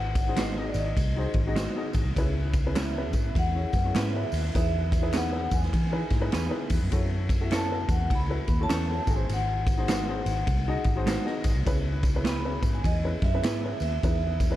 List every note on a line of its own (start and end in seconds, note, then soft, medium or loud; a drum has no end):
0.00 0.71 G#1 loud
0.00 0.16 D#4 medium
0.00 0.16 F#4 medium
0.00 0.16 G#4 medium
0.00 0.17 C5 medium
0.00 0.42 F#5 loud
0.15 kick loud
0.15 ride medium
0.15 tambourine medium
0.27 0.43 D#4 medium
0.27 0.44 F#4 medium
0.27 0.44 G#4 medium
0.27 0.44 C5 medium
0.37 0.55 G#3 medium
0.37 0.55 D#4 medium
0.37 0.56 F#4 medium
0.37 0.56 C5 medium
0.37 snare loud
0.37 clap medium
0.37 ride medium
0.37 tambourine medium
0.41 0.53 D#5 medium
0.57 0.92 D#4 medium
0.57 0.93 F#4 medium
0.57 0.93 G#4 medium
0.57 0.93 D#5 medium
0.68 0.76 D5 medium
0.74 0.92 G#1 medium
0.74 ride medium
0.74 tambourine medium
0.78 1.92 D#5 medium
0.97 1.25 C2 medium
0.97 kick medium
0.97 ride medium
0.97 tambourine soft
1.16 1.38 D#4 medium
1.16 1.38 F#4 medium
1.16 1.39 G#4 medium
1.16 1.39 C5 medium
1.34 1.66 G#1 loud
1.34 kick medium
1.34 ride medium
1.47 1.63 D#4 medium
1.47 1.63 F#4 medium
1.47 1.63 G#4 medium
1.47 1.63 D#5 medium
1.56 1.74 G#3 medium
1.56 1.74 D#4 medium
1.56 1.74 F#4 medium
1.56 1.75 C5 loud
1.56 snare loud
1.56 clap medium
1.56 ride medium
1.56 tambourine loud
1.76 2.05 D#4 medium
1.76 2.05 F#4 medium
1.76 2.05 G#4 medium
1.76 2.05 D#5 medium
1.93 2.03 G#1 medium
1.93 kick medium
1.93 ride medium
1.93 tambourine medium
2.05 2.14 C2 medium
2.16 3.13 C#2 loud
2.16 2.52 C#4 medium
2.16 2.52 E4 medium
2.16 2.53 G#4 medium
2.16 2.53 B4 loud
2.16 kick loud
2.16 ride medium
2.16 tambourine medium
2.53 kick loud
2.53 ride medium
2.53 tambourine medium
2.66 2.82 C#4 medium
2.66 2.82 E4 medium
2.66 2.82 G#4 medium
2.66 2.82 B4 medium
2.76 2.93 G#3 medium
2.76 2.94 C#4 medium
2.76 2.94 E4 medium
2.76 2.94 B4 medium
2.76 3.33 E5 medium
2.76 snare loud
2.76 clap medium
2.76 ride medium
2.76 tambourine loud
2.96 3.31 C#4 medium
2.96 3.31 E4 medium
2.96 3.32 G#4 medium
2.96 3.32 B4 medium
3.13 3.30 G#2 medium
3.13 kick loud
3.13 ride medium
3.13 tambourine medium
3.35 3.64 E2 medium
3.35 3.99 F#5 loud
3.35 kick medium
3.35 ride medium
3.35 tambourine soft
3.55 3.76 C#4 medium
3.55 3.76 E4 medium
3.55 3.77 G#4 medium
3.55 3.77 C#5 medium
3.73 3.90 F#2 loud
3.73 kick medium
3.73 snare soft
3.73 ride soft
3.73 tambourine soft
3.85 4.00 C#4 medium
3.85 4.01 E4 medium
3.85 4.01 G#4 medium
3.85 4.01 C#5 medium
3.95 4.23 G#2 loud
3.95 4.12 G#3 medium
3.95 4.13 C#4 loud
3.95 4.13 E4 loud
3.95 4.13 B4 loud
3.95 4.52 E5 loud
3.95 snare loud
3.95 clap medium
3.95 ride medium
3.95 tambourine medium
4.14 4.43 C#4 medium
4.14 4.43 E4 medium
4.14 4.43 G#4 medium
4.14 4.44 B4 medium
4.32 4.49 D#2 loud
4.32 open hi-hat medium
4.32 ride medium
4.32 tambourine medium
4.54 5.47 E2 loud
4.54 4.90 D#4 medium
4.54 4.90 E4 medium
4.54 4.90 G#4 medium
4.54 4.90 B4 medium
4.54 5.17 E5 loud
4.54 kick loud
4.54 hi-hat pedal medium
4.54 ride medium
4.54 tambourine medium
4.92 kick loud
4.92 ride medium
4.92 tambourine medium
5.01 5.18 D#4 medium
5.01 5.18 E4 medium
5.01 5.19 G#4 medium
5.01 5.19 B4 medium
5.14 5.31 B3 medium
5.14 5.31 D#4 medium
5.14 5.32 G#4 medium
5.14 5.32 B4 medium
5.14 5.53 F#5 loud
5.14 snare loud
5.14 clap medium
5.14 ride medium
5.14 tambourine medium
5.31 5.68 D#4 medium
5.31 5.68 E4 medium
5.31 5.68 G#4 medium
5.31 5.68 B4 medium
5.51 5.68 E2 medium
5.51 6.67 G#5 loud
5.51 kick medium
5.51 ride medium
5.51 tambourine medium
5.63 snare soft
5.73 6.01 E3 loud
5.73 kick medium
5.73 ride medium
5.73 tambourine soft
5.91 6.13 D#4 medium
5.91 6.14 E4 medium
5.91 6.14 G#4 medium
5.91 6.14 B4 medium
6.10 6.28 G#2 loud
6.10 kick medium
6.10 snare soft
6.10 ride medium
6.10 tambourine soft
6.20 6.37 D#4 medium
6.20 6.37 E4 medium
6.20 6.38 G#4 medium
6.20 6.38 B4 loud
6.32 6.48 E2 medium
6.32 6.50 B3 medium
6.32 6.50 D#4 medium
6.32 6.51 G#4 medium
6.32 6.51 B4 loud
6.32 snare loud
6.32 clap medium
6.32 ride medium
6.32 tambourine loud
6.49 6.79 D#4 medium
6.49 6.79 E4 medium
6.49 6.79 G#4 medium
6.49 6.80 B4 loud
6.70 6.79 E2 medium
6.70 kick loud
6.70 open hi-hat medium
6.70 ride medium
6.70 tambourine medium
6.82 6.90 F#2 medium
6.91 7.85 F#2 loud
6.91 7.27 E4 medium
6.91 7.27 F#4 medium
6.91 7.28 A4 medium
6.91 7.28 C#5 medium
6.91 kick loud
6.91 hi-hat pedal medium
6.91 ride medium
6.91 tambourine medium
7.29 kick loud
7.29 ride medium
7.29 tambourine medium
7.41 7.57 E4 medium
7.41 7.57 F#4 medium
7.41 7.57 A4 medium
7.41 7.57 E5 medium
7.51 7.69 C#4 medium
7.51 7.69 E4 medium
7.51 7.70 A4 medium
7.51 7.70 C#5 medium
7.51 snare loud
7.51 clap medium
7.51 ride medium
7.51 tambourine medium
7.55 7.92 A5 loud
7.71 8.06 E4 medium
7.71 8.06 F#4 medium
7.71 8.06 A4 medium
7.71 8.07 B4 medium
7.89 8.06 E2 medium
7.89 8.13 F#5 medium
7.89 kick loud
7.89 ride medium
7.89 tambourine medium
8.10 8.39 C#2 medium
8.10 kick medium
8.10 ride medium
8.15 8.63 B5 loud
8.29 8.51 E4 medium
8.29 8.51 F#4 medium
8.29 8.51 A4 medium
8.29 8.52 B4 medium
8.48 8.65 D#2 loud
8.48 kick medium
8.48 ride medium
8.48 tambourine soft
8.59 8.75 E4 medium
8.59 8.75 F#4 medium
8.59 8.76 A4 medium
8.59 8.76 C#5 medium
8.59 9.11 A5 loud
8.70 8.99 E2 medium
8.70 8.87 C#4 medium
8.70 8.87 E4 medium
8.70 8.88 A4 loud
8.70 8.88 C#5 medium
8.70 snare loud
8.70 clap medium
8.70 ride medium
8.70 tambourine loud
8.89 9.08 E4 medium
8.89 9.06 F#4 medium
8.89 9.08 A4 medium
8.89 9.09 C#5 medium
9.07 9.24 G#1 medium
9.07 9.67 D#4 medium
9.07 9.67 F#4 medium
9.07 9.67 G#4 medium
9.07 9.13 A4 medium
9.07 kick loud
9.07 ride medium
9.07 tambourine medium
9.11 9.30 G#5 medium
9.16 9.71 C5 medium
9.29 10.21 G#1 loud
9.29 ride medium
9.29 tambourine medium
9.33 11.42 F#5 medium
9.67 kick loud
9.67 ride medium
9.67 tambourine medium
9.77 9.94 D#4 medium
9.77 9.94 F#4 medium
9.77 9.94 G#4 medium
9.77 9.94 C5 medium
9.88 10.06 G#3 loud
9.88 10.06 D#4 loud
9.88 10.06 F#4 loud
9.88 10.07 C5 loud
9.88 snare loud
9.88 clap medium
9.88 ride medium
9.88 tambourine loud
10.08 10.43 D#4 medium
10.08 10.43 F#4 medium
10.08 10.43 G#4 medium
10.08 10.44 C5 loud
10.26 10.43 G#1 medium
10.26 ride medium
10.26 tambourine medium
10.47 10.75 C2 medium
10.47 kick loud
10.47 ride medium
10.47 tambourine soft
10.68 10.89 D#4 loud
10.68 10.89 F#4 medium
10.68 10.89 G#4 medium
10.68 10.89 D#5 loud
10.84 11.16 G#1 loud
10.84 kick medium
10.84 ride medium
10.84 tambourine soft
10.96 11.12 D#4 medium
10.96 11.12 F#4 medium
10.96 11.13 G#4 medium
10.96 11.13 C5 loud
11.06 11.24 G#3 loud
11.06 11.25 D#4 medium
11.06 11.25 F#4 loud
11.06 11.25 C5 loud
11.06 snare loud
11.06 clap loud
11.06 ride medium
11.06 tambourine medium
11.25 11.54 D#4 medium
11.25 11.54 F#4 medium
11.25 11.54 G#4 medium
11.25 11.55 D#5 loud
11.25 snare soft
11.44 11.53 G#1 medium
11.44 kick loud
11.44 ride medium
11.44 tambourine medium
11.55 11.64 C2 loud
11.66 12.59 C#2 loud
11.66 12.01 C#4 loud
11.66 12.01 E4 medium
11.66 12.02 G#4 medium
11.66 12.02 B4 loud
11.66 kick loud
11.66 ride medium
11.66 tambourine medium
12.03 kick loud
12.03 ride medium
12.03 tambourine medium
12.15 12.31 C#4 medium
12.15 12.31 E4 medium
12.15 12.31 G#4 medium
12.15 12.31 B4 medium
12.25 12.42 B3 loud
12.25 12.43 E4 loud
12.25 12.43 G#4 loud
12.25 12.43 B4 loud
12.25 12.76 B5 loud
12.25 snare loud
12.25 clap loud
12.25 ride medium
12.25 tambourine medium
12.44 12.80 C#4 medium
12.44 12.80 E4 medium
12.44 12.80 G#4 medium
12.44 12.80 B4 medium
12.62 12.80 G#2 medium
12.62 kick loud
12.62 ride medium
12.62 tambourine medium
12.75 12.86 G#5 loud
12.84 13.13 E2 medium
12.84 13.24 D#5 medium
12.84 kick medium
12.84 ride medium
12.84 tambourine soft
13.03 13.25 C#4 medium
13.03 13.25 E4 medium
13.03 13.25 G#4 medium
13.03 13.26 B4 medium
13.22 13.39 F#2 loud
13.22 13.83 E5 loud
13.22 kick medium
13.22 snare soft
13.22 ride medium
13.33 13.49 C#4 medium
13.33 13.49 E4 medium
13.33 13.50 G#4 medium
13.33 13.50 B4 medium
13.44 13.62 B3 loud
13.44 13.62 E4 medium
13.44 13.62 G#4 medium
13.44 13.62 B4 loud
13.44 snare loud
13.44 clap loud
13.44 ride medium
13.44 tambourine loud
13.63 13.92 C#4 medium
13.63 13.92 E4 medium
13.63 13.92 G#4 medium
13.63 13.93 B4 medium
13.80 13.98 D#2 medium
13.80 14.49 E5 loud
13.80 ride medium
13.80 tambourine medium
14.03 14.56 E2 loud
14.03 14.38 D#4 medium
14.03 14.38 E4 medium
14.03 14.39 G#4 medium
14.03 14.39 B4 medium
14.03 kick loud
14.03 ride medium
14.03 tambourine medium
14.40 kick loud
14.40 ride medium
14.40 tambourine medium
14.50 14.56 D#4 medium
14.50 14.56 E4 medium
14.50 14.56 G#4 medium
14.50 14.56 B4 medium